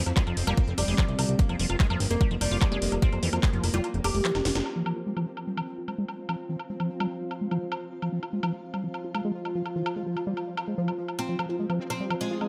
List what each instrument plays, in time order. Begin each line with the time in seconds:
Already playing: synth texture F3 C4, ambient pad F4 C5 G5
0.06 analog synth bass F2, wobble bass E4, closed hi-hat, high woodblock
0.17 acid bass G#3, wobble bass E4, kick, clap, closed hi-hat
0.27 analog synth bass F1, acid bass F3, closed hi-hat, high woodblock
0.37 analog synth bass F1, wobble bass C4, open hi-hat
0.47 analog synth bass F1, acid bass G3, oud A#3, closed hi-hat, high woodblock
0.57 kick, closed hi-hat
0.68 analog synth bass F1, closed hi-hat
0.78 analog synth bass F1, oud G3, open hi-hat, high woodblock
0.88 analog synth bass F1, acid bass G#3, open hi-hat
0.98 acid bass F3, kick, clap, closed hi-hat, high woodblock
1.08 analog synth bass C2, closed hi-hat
1.19 analog synth bass C2, open hi-hat, high woodblock
1.29 analog synth bass C2, closed hi-hat
1.39 oud A#3, synth texture A#3, kick, closed hi-hat
1.49 analog synth bass F1, acid bass F3, closed hi-hat, high woodblock
1.59 analog synth bass F1, acid bass F3, open hi-hat
1.70 analog synth bass F1, acid bass F4, closed hi-hat, high woodblock
1.80 acid bass G#3, kick, clap, closed hi-hat
1.90 analog synth bass F1, acid bass F3, closed hi-hat, high woodblock
2.00 analog synth bass G1, wobble bass C4, open hi-hat
2.10 analog synth bass F1, oud A#3, wobble bass C4, closed hi-hat
2.21 acid bass G3, kick, closed hi-hat, high woodblock
2.31 analog synth bass F1, acid bass F3, closed hi-hat
2.41 analog synth bass F1, oud G3, wobble bass F4, open hi-hat, high woodblock
2.51 analog synth bass F1, acid bass F4, wobble bass F4, open hi-hat
2.61 acid bass G#3, kick, clap, closed hi-hat, high woodblock
2.72 analog synth bass F1, acid bass G#3, closed hi-hat
2.82 analog synth bass F1, wobble bass G#3, open hi-hat
2.92 analog synth bass F1, closed hi-hat, high woodblock
3.02 acid bass F3, oud C4, kick, closed hi-hat
3.12 analog synth bass F2, closed hi-hat, high woodblock
3.23 analog synth bass F2, acid bass E3, wobble bass F4, open hi-hat
3.33 analog synth bass F2, wobble bass F4, closed hi-hat, high woodblock
3.43 acid bass G#3, kick, clap, closed hi-hat
3.53 analog synth bass F1, acid bass F3, closed hi-hat
3.63 analog synth bass F1, wobble bass E4, open hi-hat, high woodblock
3.74 analog synth bass F1, acid bass G3, wobble bass E4, oud F4, closed hi-hat
3.84 closed hi-hat, high woodblock
3.94 analog synth bass F1, closed hi-hat
4.04 analog synth bass F1, oud G4, open hi-hat, high woodblock
4.15 analog synth bass F1, acid bass G#3, open hi-hat
4.25 acid bass F3, clap, closed hi-hat
4.35 analog synth bass F1, snare, closed hi-hat, high woodblock
4.45 analog synth bass F1, wobble bass F4, snare, open hi-hat
4.55 analog synth bass F1, snare, closed hi-hat, high woodblock
4.66 synth texture F3 C4, ambient pad F4, high woodblock
4.76 acid bass F3
4.86 acid bass F3, high woodblock
4.96 acid bass F4
5.06 acid bass G#3
5.17 acid bass F3, ambient pad C5 F5, high woodblock
5.37 high woodblock
5.47 acid bass G3
5.57 acid bass F3, high woodblock
5.78 acid bass F4
5.88 acid bass G#3, high woodblock
5.98 acid bass G#3
6.08 high woodblock
6.29 acid bass F3, high woodblock
6.49 acid bass E3
6.59 high woodblock
6.70 acid bass G#3
6.80 acid bass F3, high woodblock
7.00 acid bass G3, high woodblock
7.31 high woodblock
7.41 acid bass G#3
7.51 acid bass F3, high woodblock
7.72 high woodblock
7.92 synth texture F4
8.02 acid bass F3, high woodblock
8.12 acid bass F3
8.23 acid bass F4, high woodblock
8.33 acid bass G#3
8.43 acid bass F3, high woodblock
8.74 acid bass G3, high woodblock
8.84 acid bass F3
8.94 high woodblock
9.04 acid bass F4
9.15 acid bass G#3, high woodblock
9.25 acid bass G#3
9.45 high woodblock
9.55 acid bass F3
9.66 high woodblock
9.76 acid bass E3
9.86 high woodblock
9.96 acid bass G#3
10.06 acid bass F3
10.17 high woodblock
10.27 acid bass G3
10.37 high woodblock
10.57 high woodblock
10.68 acid bass G#3
10.78 acid bass F3
10.88 acid bass G3, high woodblock
11.08 high woodblock
11.19 synth texture C4, oud C4, high woodblock
11.29 acid bass F3
11.39 acid bass F3, high woodblock
11.49 acid bass F4
11.59 acid bass G#3
11.70 acid bass F3, ambient pad F5, high woodblock
11.80 wobble bass C4
11.90 wobble bass C4, oud C4, high woodblock
12.00 acid bass G3
12.10 acid bass F3, high woodblock
12.21 oud G#3, wobble bass F4
12.31 wobble bass F4, acid bass F4
12.41 acid bass G#3, high woodblock